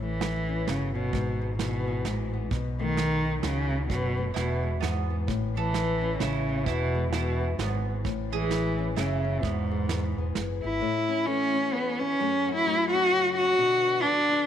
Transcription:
Already playing: A1 A2
0.02 E3 A3
0.21 E3, snare, closed hi-hat
0.49 C#4
0.67 G1 C#3 F#4, snare, closed hi-hat
0.94 B2 C#4
1.13 G#1 G#2, kick, closed hi-hat
1.41 G#3
1.59 B2 E3, snare, closed hi-hat
1.87 B3
2.05 A1 G#2 F#4, snare, closed hi-hat
2.33 B3
2.51 B1 B2, kick, closed hi-hat
2.79 D#3 A3
2.97 D#3, snare, closed hi-hat
3.25 D#4
3.43 C#2 C#3 F#4, snare, closed hi-hat
3.70 D#4
3.88 F#1 F#2 B2, kick, closed hi-hat
4.17 A3
4.34 E1 E2 B2 E4, snare, closed hi-hat
4.63 G#3
4.81 E2 G#2 E3 B3, snare, closed hi-hat
5.10 B3
5.27 A1 A2, kick, closed hi-hat
5.56 E3 B3 A4
5.73 E3, snare, closed hi-hat
6.01 C#4
6.19 A1 C#3 E4, snare, closed hi-hat
6.49 C#4
6.65 E1 E2 B2 E4, kick, closed hi-hat
6.95 G#3
7.12 B2 E3 E4, snare, closed hi-hat
7.41 B3
7.58 G#1 F#2 G#2 B3, snare, closed hi-hat
7.86 G#2
8.04 A1 A2, kick, closed hi-hat
8.32 E3 G#3 G#4
8.50 E3, snare, closed hi-hat
8.78 C#4
8.96 F#1 C#3 E4 G#4, snare, closed hi-hat
9.25 C#4
9.42 E1 E2 G#2 B3, kick, closed hi-hat
9.71 G#3
9.89 E3, snare, closed hi-hat
10.17 E1 B3
10.35 F#1 G#4, snare, closed hi-hat
10.63 G#1 B3 E4
10.81 A2 A3
11.09 C#4
11.26 E3 A3 C#4
11.54 C#4
11.72 E2 B3
11.99 C#4 E4
12.19 F#2 F#3 A3 C#4 F#4
12.48 F#4
12.55 E4
12.66 F#3 A3
12.91 C#4 F#4
13.12 C#3
13.37 C#4 F#4
13.58 B2 D3 B3 D4
13.86 D4
14.02 D3 B3 D4
14.31 D4

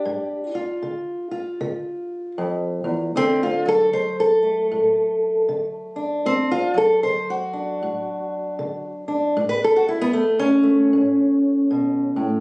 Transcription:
Already playing: D4 G4
0.05 G2
0.55 F4
0.83 D3
1.31 F4
1.61 D3
2.38 F2
2.84 E2
3.16 D2 D3 A3 C4
3.43 F4
3.66 F#3 A4
3.93 D3 C5
4.20 A4
4.43 A3
4.71 A2
5.49 D3
5.96 D4
6.26 D2 C4
6.51 F4
6.74 F#3 A4
7.03 D3 C5
7.30 F#4
7.53 D4
7.83 A2
8.59 D3
9.08 D4
9.37 A2
9.49 B4
9.64 A4
9.76 F#4
9.89 E4
10.01 B3
10.13 A3
10.39 C#4
10.63 A3
10.93 A2
11.71 B2
12.16 A2

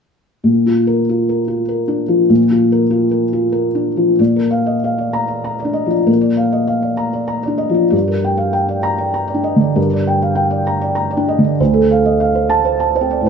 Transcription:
0.44 A#2
0.66 F4
0.87 A#4
1.09 F4
1.29 A#4
1.48 F4
1.69 A#4
1.88 D4
2.08 F3
2.29 A#2
2.51 F4
2.72 A#4
2.90 F4
3.11 A#4
3.33 F4
3.52 A#4
3.75 D4
3.97 F3
4.19 A#2 D5
4.36 A#4
4.51 F5
4.66 D#5
4.84 F5
4.98 D5
5.13 A#5
5.28 D5
5.44 A#5
5.60 D5
5.65 D4
5.73 D#5
5.86 F3
5.91 D5
6.06 A#2 A#4
6.21 D5
6.37 F5
6.52 D#5
6.68 F5
6.82 D5
6.97 A#5
7.13 D5
7.28 A#5
7.43 D5
7.47 D4
7.58 D#5
7.69 F3
7.74 D5
7.90 G2 D5
8.08 A#4
8.25 G5
8.38 F5
8.53 G5
8.69 D5
8.83 A#5
8.98 D5
9.14 A#5
9.28 D5
9.34 D4
9.44 D#5
9.56 D3
9.61 D5
9.76 G2 A#4
9.93 D5
10.07 G5
10.22 F5
10.35 G5
10.51 D5
10.67 A#5
10.81 D5
10.95 A#5
11.11 D5
11.17 D4
11.28 D#5
11.39 D3
11.44 D5
11.60 D2 C5
11.74 A4
11.91 F5
12.05 D#5
12.20 F5
12.35 C5
12.50 A5
12.65 C5
12.80 A5
12.95 C5
13.01 C4
13.11 D5
13.21 A2
13.26 C5

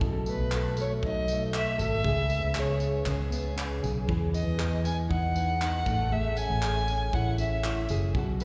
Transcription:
0.00 B1 B2 A4, kick
0.26 A3 B4, tambourine
0.40 B1
0.52 A4, clap
0.77 A3, tambourine
0.81 C#5
1.03 B1 D#4 D#5, kick
1.28 A3, tambourine
1.54 E5, clap
1.78 G#1 A4, tambourine
1.82 E5
2.04 C#2 C#3 G#4, kick
2.29 B3, tambourine
2.43 C#2
2.55 G#4, clap
2.60 C#5
2.80 B3, tambourine
3.05 C#2 C#4, kick, clap
3.10 G#4
3.30 B3, tambourine
3.56 C#4, clap
3.83 B1 G#4, tambourine
4.08 E2 E3 G#4, kick
4.34 B3 D#5, tambourine
4.47 E2
4.58 G#4, clap
4.84 B3 G#5, tambourine
5.09 E2 D#4 F#5, kick
5.35 B3, tambourine
5.61 D#4, clap
5.86 A1 A3, kick, tambourine
6.11 A3 G#4 E5
6.37 C#4 G#5, tambourine
6.50 A1
6.62 G#4, clap
6.88 C#4, tambourine
7.13 A1 E4 F#5, kick
7.38 C#4 E5, tambourine
7.64 E4, clap
7.89 F#1 G#4, tambourine
8.15 B1 B2 F#4, kick
8.40 A3 B4, tambourine

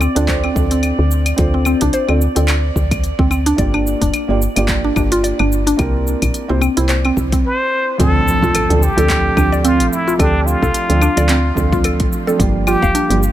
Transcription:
Already playing: D5
0.01 C4, claves, shaker
0.15 D2 C4 D4 F4 A4 D5, closed hi-hat, shaker
0.28 C5, kick, clap, closed hi-hat, shaker
0.44 C4, claves
0.53 D2 C4 D4 F4 A4 D5, kick, shaker
0.71 C4, closed hi-hat, shaker
0.83 closed hi-hat, claves, shaker
0.99 D2
1.11 shaker
1.26 closed hi-hat, claves, shaker
1.36 D2 C4 D4 F4 A4 C5, kick, closed hi-hat, shaker
1.54 C4
1.65 C4, claves, shaker
1.81 C2 D4, kick, closed hi-hat, shaker
1.93 C5, closed hi-hat, shaker
2.08 D2 C4 D4 F4 A4 D5, claves
2.21 shaker
2.35 D2 C4 D4 F4 A4 D5, closed hi-hat, shaker
2.48 clap, closed hi-hat, claves, shaker
2.76 D2, kick, shaker
2.91 kick, closed hi-hat, claves, shaker
3.04 closed hi-hat, shaker
3.19 D2 C4, kick
3.31 C4, claves, shaker
3.46 D4, closed hi-hat, shaker
3.56 G1 A#3 D4 F4 G4 D5, kick, closed hi-hat, shaker
3.74 D4, claves
3.87 shaker
4.01 F1 D4, kick, closed hi-hat, shaker
4.14 closed hi-hat, claves, shaker
4.28 G1 A#3 D4 F4 G4 D5
4.42 shaker
4.56 G1 A#3 D4 F4 G4 D5, closed hi-hat, claves, shaker
4.68 kick, clap, closed hi-hat, shaker
4.84 D4
4.95 G1 A#3 D4 F4 G4, kick, claves, shaker
4.99 D5
5.12 F4, closed hi-hat, shaker
5.24 D5, closed hi-hat, shaker
5.39 G1 D4, claves
5.52 shaker
5.67 D4, closed hi-hat, shaker
5.77 C2 A#3 C4 E4 G4 A#4, kick, closed hi-hat, claves, shaker
6.07 shaker
6.22 A#1, kick, closed hi-hat, claves, shaker
6.34 closed hi-hat, shaker
6.48 C2 A#3 C4 E4 G4 C5
6.61 C4, claves, shaker
6.77 C2 A#3 C4 E4 G4 C5, closed hi-hat, shaker
6.89 C5, clap, closed hi-hat, shaker
7.05 C4, claves
7.17 C2, kick, shaker
7.32 C4, kick, closed hi-hat, shaker
7.46 C5
7.98 D2 F3 A3 C4 D4 A4, kick, closed hi-hat, impact, shaker
8.28 shaker
8.42 C2 F4, kick, shaker
8.55 A4, closed hi-hat, claves, shaker
8.69 D2 F3 A3 C4 D4 A4, closed hi-hat
8.83 G4, shaker
8.96 D2 F3 A3 C4 D4 A4, closed hi-hat, shaker
9.10 kick, clap, closed hi-hat, shaker
9.35 D2 F3 A3 C4 D4 A4, kick, claves, shaker
9.52 D5, shaker
9.64 C4 F4, closed hi-hat, shaker
9.80 A1, closed hi-hat
9.92 E4, shaker
10.08 F4, shaker
10.17 D2 F3 A3 C4 D4 G4 A4, kick, closed hi-hat, claves, shaker
10.46 F4, shaker
10.62 C2 A4, kick, shaker
10.74 closed hi-hat, shaker
10.88 D2 F3 A3 C4 D4 A4, closed hi-hat
11.02 D4, claves, shaker
11.16 D2 F3 A3 C4 D4 A4 D5, closed hi-hat, shaker
11.29 C4, clap, closed hi-hat, shaker
11.54 D2 F3 A3 C4 D4 A4, kick, shaker
11.72 F4, kick, shaker
11.84 A4, closed hi-hat, claves, shaker
12.00 A1, kick, closed hi-hat
12.13 shaker
12.26 F3 A3 C4 D4 A4, shaker
12.37 G1 F3 G3 A#3 D4, kick, closed hi-hat, shaker
12.41 G4
12.67 F4 G4, claves, shaker
12.82 F1 F5, kick, shaker
12.95 D4, closed hi-hat, shaker
13.09 G1 F3 G3 A#3 D4 G4, closed hi-hat
13.23 shaker

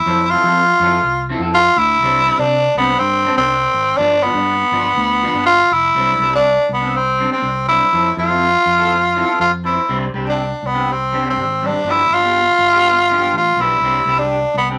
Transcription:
Already playing: E4
0.06 F2 F3 C4 E4 A4
0.30 F3 C4 E4 F4
0.35 A4
0.43 F3 A4, muted clean electric guitar stroke
0.47 C4
0.80 F2 F3 C4 E4
0.84 A4
1.03 C2
1.29 F3 C4 E4 A4
1.39 F2 E4 A4
1.44 C4
1.54 F4
1.76 D2 E4
2.01 C2 G3 C4
2.05 D4
2.26 G3 C4 D4
2.39 C3 C4 D4
2.75 C2 G3 B3 C4
2.79 D4
2.99 G2 C4
3.25 G3 C4 D4
3.37 C2 C4 D4, muted clean electric guitar stroke
3.74 G#1
3.97 G1 F3 B3 D4
4.23 F3 B3 D4
4.34 G2 D4
4.38 B3
4.72 G1 F3 B3 D4
4.96 D2
5.22 F3 B3 D4
5.34 G1 B3 D4
5.46 F4
5.71 F1 E4
5.95 C2 G3 C4 D4
6.18 C2 G3 C4 D4
6.30 C4 D4
6.36 D4
6.69 C2
6.73 B3
6.81 C4 D4
6.96 C4
7.18 G3 C4 D4
7.32 C4 D4
7.42 C2
7.68 G3 C4 D4 E4
7.93 F2 F3 C4 E4 A4
8.17 F2 F3 C4 E4 F4 A4
8.28 C4 E4 A4
8.66 F2
8.79 C4 E4 A4
9.16 F3 C4 E4 A4
9.26 C4 A4
9.40 F2 F4
9.64 F3 C4 E4
9.89 C2 G3 C4 D4 G4
10.14 C2 G3 C4 D4 G4
10.25 C4 D4 G4
10.63 C2
10.67 B3
10.74 C4 D4 G4
10.92 C4
11.12 G3 C4 D4 G4
11.26 C4 D4 G4
11.30 C4
11.36 G#1
11.62 G3 C4 D4 G4
11.67 D4
11.84 G1 F3 B3 D4
11.88 E4 G4
12.10 G1 F3 B3 D4 F4, muted clean electric guitar stroke
12.24 B3 D4 G4
12.59 G1
12.73 B3 D4 G4
13.10 F3 B3 D4 G4
13.20 B3 D4 G4
13.32 A1
13.37 F4
13.56 B1 F3 B3 D4
13.61 E4 G4
13.80 C2 D4, muted clean electric guitar stroke
13.84 C4 G4
14.05 C2 G3 C4 D4 G4
14.19 D4 G4
14.54 C2 B3
14.69 C4 D4 G4

